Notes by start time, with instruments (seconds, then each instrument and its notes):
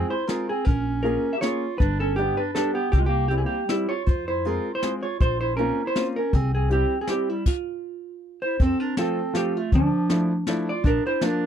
Already playing: upright piano G#3 C4 F4 G#4, hollow-body jazz guitar G#4
0.09 clarinet E4, hollow-body jazz guitar C5
0.27 upright piano G#3 C4 F4 G#4, clarinet F4, hollow-body jazz guitar A#4, snare, closed hi-hat
0.49 clarinet C4, hollow-body jazz guitar G#4
0.65 upright bass A#1, clarinet C#4, hollow-body jazz guitar A#4, kick, closed hi-hat
1.03 upright piano A#3 C#4 F4 G#4, clarinet C#4, hollow-body jazz guitar A#4, closed hi-hat
1.33 hollow-body jazz guitar E5
1.37 clarinet F4 G4, hollow-body jazz guitar C#5
1.42 upright piano A#3 C#4 F4 G#4, snare, closed hi-hat
1.78 upright bass G1, clarinet D4, hollow-body jazz guitar B4, kick, closed hi-hat
2.00 clarinet C#4, hollow-body jazz guitar A4
2.16 upright piano G3 B3 D4 G4, clarinet B3, hollow-body jazz guitar G4, closed hi-hat
2.37 clarinet D4, hollow-body jazz guitar B4
2.52 upright piano G3 B3 D4 G4, clarinet D4, hollow-body jazz guitar A4, snare, closed hi-hat
2.74 clarinet B3, hollow-body jazz guitar G4
2.92 upright bass C2, clarinet C4, hollow-body jazz guitar G4, kick, closed hi-hat
2.98 clarinet G#3, hollow-body jazz guitar F4
3.06 clarinet A#3, hollow-body jazz guitar G4
3.28 upright piano G3 C4 E4, clarinet C4, hollow-body jazz guitar G4, closed hi-hat
3.32 clarinet C4, upright piano G4
3.38 hollow-body jazz guitar G#4
3.44 clarinet A#3, hollow-body jazz guitar G4
3.67 clarinet G3, upright piano G3 C4 E4, hollow-body jazz guitar E4, snare, closed hi-hat
3.71 upright piano G4
3.88 clarinet F4, hollow-body jazz guitar C#5
4.04 upright bass F2, clarinet F4, hollow-body jazz guitar C5, kick, closed hi-hat
4.27 clarinet E4, hollow-body jazz guitar C5
4.45 upright piano G#3 C4 F4 G#4, clarinet F4, hollow-body jazz guitar A#4, closed hi-hat
4.74 clarinet E4, hollow-body jazz guitar C5
4.82 upright piano G#3 C4 F4 G#4, snare, closed hi-hat
5.02 clarinet F4, hollow-body jazz guitar C#5
5.18 upright bass A#1, clarinet F4, hollow-body jazz guitar C5, kick, closed hi-hat
5.39 clarinet E4, hollow-body jazz guitar C5
5.55 clarinet C#4, hollow-body jazz guitar A#4, closed hi-hat
5.59 upright piano A#3 C4 C#4 F4
5.84 clarinet E4, hollow-body jazz guitar C5
5.96 upright piano A#3 C4 C#4 F4, snare, closed hi-hat
6.14 clarinet C#4, hollow-body jazz guitar A#4
6.33 upright bass C2, clarinet C4, hollow-body jazz guitar G#4, kick, closed hi-hat
6.54 clarinet C4, hollow-body jazz guitar G#4
6.69 upright piano G3 C4 E4 G4, clarinet C4, hollow-body jazz guitar G4, closed hi-hat
7.01 clarinet C4, hollow-body jazz guitar G#4
7.07 upright piano G3 C4 E4 G4, clarinet C4, hollow-body jazz guitar G4, snare, closed hi-hat
7.30 clarinet G3, hollow-body jazz guitar E4
7.46 hollow-body jazz guitar F4, kick, crash
8.42 clarinet E4, hollow-body jazz guitar C5
8.59 upright bass F2, clarinet C4, hollow-body jazz guitar C4 A4, kick, closed hi-hat
8.80 clarinet D4, hollow-body jazz guitar A#4
8.97 upright piano F3 A3 C4 F4, clarinet C4, hollow-body jazz guitar A4, snare, closed hi-hat
9.33 upright piano F3 A3 C4 F4, clarinet C4, hollow-body jazz guitar G4, snare, closed hi-hat
9.55 clarinet A3, hollow-body jazz guitar F4
9.72 upright bass D2, clarinet F3, hollow-body jazz guitar F3 D4, kick, closed hi-hat
10.09 upright piano F3 A3 D4 E4, snare, closed hi-hat
10.47 upright piano F3 A3 D4 E4, snare, closed hi-hat
10.69 clarinet F4, hollow-body jazz guitar D5
10.84 upright bass A#1, clarinet D4, hollow-body jazz guitar D4 A#4, kick, closed hi-hat
11.06 clarinet E4, hollow-body jazz guitar C5
11.21 upright piano F3 A#3 D4 F4, clarinet D4, hollow-body jazz guitar A#4, snare, closed hi-hat